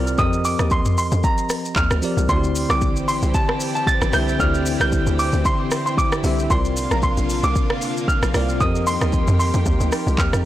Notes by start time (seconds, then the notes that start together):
Already playing: C2 C3 C4 F4 A#4 D5 F6
0.07 shaker
0.17 F2 F3 C4 G4 A#4 D#5 D#6, kick, shaker
0.33 shaker
0.45 D6, open hi-hat, shaker
0.59 D#2, cross-stick, shaker
0.71 C6, kick, shaker
0.85 F2, mid tom, shaker
0.98 C6, open hi-hat, shaker
1.12 F2, shaker
1.23 A#5, kick, shaker
1.38 shaker
1.50 cross-stick, open hi-hat, shaker
1.65 shaker
1.76 D#2 F6, kick, clap, shaker
1.91 D2, cross-stick, shaker
2.02 F3 C4 G4 A#4 D5, open hi-hat, shaker
2.17 C2, shaker
2.28 D2 D3 E3 C4 E4 F#4 G4 D5 C6, kick, shaker
2.37 G4
2.44 shaker
2.56 open hi-hat, shaker
2.70 C2 D6, cross-stick, shaker
2.81 kick, shaker
2.96 A1, shaker
3.08 C6, open hi-hat, shaker
3.22 C2, shaker
3.34 A5, kick, shaker
3.49 cross-stick
3.60 open hi-hat, shaker
3.75 A5, shaker
3.87 A6, kick, shaker
4.01 A1, cross-stick, shaker
4.12 C2 D3 C4 E4 G4 E5 G6, cross-stick, open hi-hat, shaker
4.29 shaker
4.39 D2 D3 C4 E4 G4 D5 F6, kick, shaker
4.54 shaker
4.66 open hi-hat, shaker
4.80 C2 G6, cross-stick, shaker
4.92 kick, shaker
5.07 D2, shaker
5.19 D6, open hi-hat, shaker
5.33 D2, shaker
5.45 C6, kick, shaker
5.71 cross-stick, open hi-hat, shaker
5.86 C6, shaker
5.98 D6, kick, shaker
6.12 cross-stick, shaker
6.23 C2 D3 C4 E4 G4 E5, open hi-hat, shaker
6.39 shaker
6.49 C2 C3 D3 A#3 C4 F4 A#4 D5 C6, kick, shaker
6.65 shaker
6.77 open hi-hat, shaker
6.91 A#1 A#5, cross-stick, shaker
7.03 C6, kick, shaker
7.17 A#1, shaker
7.30 open hi-hat, shaker
7.43 C2 D6, shaker
7.55 kick, shaker
7.70 cross-stick
7.82 open hi-hat, shaker
7.97 shaker
8.08 F6, kick, shaker
8.22 A#1, cross-stick, shaker
8.33 C2 C3 C4 F4 A#4 D5, cross-stick, open hi-hat, shaker
8.49 shaker
8.60 F2 D#3 F3 C4 G4 A#4 D#5 D#6, kick, shaker
8.75 shaker
8.87 C6, open hi-hat, shaker
9.01 D#2, cross-stick, shaker
9.13 kick, shaker
9.27 F2, mid tom, shaker
9.39 C6, open hi-hat, shaker
9.54 F2, shaker
9.66 D#2, kick, shaker
9.80 D2, shaker
9.92 cross-stick, open hi-hat, shaker
10.07 C2, shaker
10.18 D#2 F6, kick, clap, shaker
10.33 F2, cross-stick, shaker